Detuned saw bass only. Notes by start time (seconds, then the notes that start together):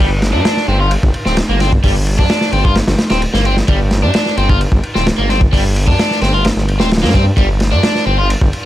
0.00 G1
0.34 G2
0.68 G1
1.03 G1
1.26 D1
1.49 G1
1.84 G1
2.19 G2
2.53 G1
2.88 G1
3.11 D1
3.34 G1
3.68 G1
4.03 G2
4.38 G1
4.72 G1
4.96 D1
5.19 G1
5.53 G1
5.87 G2
6.22 G1
6.57 G1
6.80 D1
7.03 G2
7.37 G1
7.72 G2
8.06 G1
8.41 G1